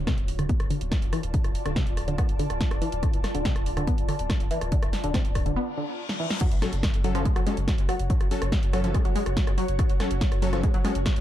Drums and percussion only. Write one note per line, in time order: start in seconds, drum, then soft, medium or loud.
0.07 kick loud
0.07 cross-stick loud
0.07 snare loud
0.07 closed hi-hat medium
0.18 closed hi-hat medium
0.28 open hi-hat loud
0.39 cross-stick medium
0.39 closed hi-hat soft
0.49 kick loud
0.49 closed hi-hat medium
0.60 cross-stick medium
0.60 closed hi-hat soft
0.70 open hi-hat loud
0.81 closed hi-hat soft
0.92 kick loud
0.92 cross-stick medium
0.92 snare loud
0.92 closed hi-hat medium
1.02 closed hi-hat medium
1.13 cross-stick medium
1.13 open hi-hat loud
1.23 closed hi-hat medium
1.34 kick loud
1.34 closed hi-hat medium
1.44 cross-stick medium
1.44 closed hi-hat soft
1.55 open hi-hat loud
1.66 cross-stick loud
1.66 closed hi-hat medium
1.76 kick loud
1.76 snare loud
1.76 closed hi-hat medium
1.87 closed hi-hat medium
1.97 cross-stick medium
1.97 open hi-hat loud
2.08 closed hi-hat soft
2.18 kick loud
2.18 cross-stick medium
2.18 closed hi-hat medium
2.29 closed hi-hat medium
2.39 open hi-hat loud
2.50 cross-stick medium
2.50 closed hi-hat soft
2.61 kick loud
2.61 snare loud
2.61 closed hi-hat medium
2.71 cross-stick loud
2.71 closed hi-hat soft
2.82 open hi-hat loud
2.92 closed hi-hat medium
3.03 kick loud
3.03 cross-stick medium
3.03 closed hi-hat loud
3.13 closed hi-hat medium
3.24 cross-stick loud
3.24 snare medium
3.24 open hi-hat loud
3.35 closed hi-hat medium
3.45 kick loud
3.45 snare loud
3.45 closed hi-hat medium
3.56 cross-stick medium
3.56 closed hi-hat soft
3.66 open hi-hat loud
3.77 cross-stick medium
3.77 closed hi-hat soft
3.87 kick loud
3.87 closed hi-hat medium
3.98 closed hi-hat medium
4.09 cross-stick medium
4.09 open hi-hat loud
4.19 closed hi-hat medium
4.30 kick loud
4.30 cross-stick medium
4.30 snare loud
4.30 closed hi-hat medium
4.40 closed hi-hat medium
4.51 open hi-hat loud
4.61 cross-stick medium
4.61 closed hi-hat medium
4.72 kick loud
4.72 closed hi-hat loud
4.83 cross-stick loud
4.83 closed hi-hat medium
4.93 snare medium
4.93 open hi-hat loud
5.04 closed hi-hat medium
5.14 kick loud
5.14 cross-stick medium
5.14 snare loud
5.14 closed hi-hat loud
5.25 closed hi-hat medium
5.35 kick medium
5.35 cross-stick loud
5.35 open hi-hat loud
5.46 closed hi-hat soft
6.09 snare medium
6.30 snare loud
6.41 kick loud
6.41 closed hi-hat loud
6.41 crash loud
6.52 closed hi-hat medium
6.62 cross-stick medium
6.62 snare medium
6.62 open hi-hat loud
6.73 closed hi-hat medium
6.83 kick loud
6.83 cross-stick medium
6.83 snare loud
6.83 closed hi-hat loud
6.94 closed hi-hat medium
7.04 open hi-hat loud
7.15 cross-stick medium
7.15 closed hi-hat medium
7.25 kick loud
7.25 closed hi-hat medium
7.36 cross-stick medium
7.36 closed hi-hat medium
7.47 open hi-hat loud
7.57 closed hi-hat medium
7.68 kick loud
7.68 cross-stick medium
7.68 snare loud
7.68 closed hi-hat loud
7.78 closed hi-hat medium
7.89 cross-stick medium
7.89 open hi-hat loud
7.99 closed hi-hat medium
8.10 kick loud
8.10 closed hi-hat loud
8.21 cross-stick medium
8.21 closed hi-hat medium
8.31 open hi-hat loud
8.42 cross-stick loud
8.42 closed hi-hat medium
8.52 kick loud
8.52 snare loud
8.52 closed hi-hat loud
8.63 closed hi-hat medium
8.73 cross-stick medium
8.73 open hi-hat loud
8.84 closed hi-hat medium
8.94 kick loud
8.94 cross-stick medium
8.94 closed hi-hat loud
9.05 closed hi-hat medium
9.16 open hi-hat loud
9.26 cross-stick medium
9.26 closed hi-hat medium
9.37 kick loud
9.37 snare loud
9.37 closed hi-hat loud
9.47 cross-stick medium
9.47 closed hi-hat medium
9.58 open hi-hat loud
9.68 closed hi-hat medium
9.79 kick loud
9.79 cross-stick medium
9.79 closed hi-hat loud
9.90 closed hi-hat medium
10.00 cross-stick medium
10.00 snare medium
10.00 open hi-hat loud
10.11 closed hi-hat medium
10.21 kick loud
10.21 snare loud
10.21 closed hi-hat loud
10.32 cross-stick medium
10.32 closed hi-hat medium
10.42 open hi-hat loud
10.53 cross-stick medium
10.53 closed hi-hat soft
10.63 kick loud
10.63 closed hi-hat loud
10.74 closed hi-hat medium
10.85 cross-stick medium
10.85 open hi-hat loud
10.95 closed hi-hat medium
11.06 kick loud
11.06 cross-stick medium
11.06 snare loud
11.06 closed hi-hat medium
11.16 closed hi-hat medium